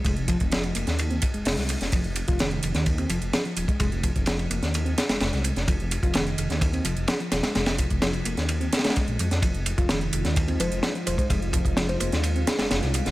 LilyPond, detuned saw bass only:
\new Staff \with { instrumentName = "Detuned saw bass" } { \clef bass \time 4/4 \key f \minor \tempo 4 = 128 f,,16 f,,8 f,,8. f,,16 ees,8. r16 f,,16 f,,16 c,8 f,,16 | f,,16 f,,8 f,,8. f,,16 ees,8. f,,16 f,,16 r8 ees,,16 r16 | f,,16 f,,8 f,,8. f,,16 ees,8. r16 f,,16 f,,16 c,8 f,,16 | f,,16 f,,8 f,,8. f,,16 ees,8. f,,16 f,,16 r8 ees,,16 r16 |
f,,16 f,,8 f,,8. f,,16 ees,8. r8. bes,,16 f,16 f,16 | f,,16 f,,8 f,,8. f,,16 ees,8. f,,16 f,,16 r8 ees,,16 r16 | f,,16 f,,8 f,,8. f,,16 ees,8. r16 f,,16 f,,16 c,8 f,,16 | }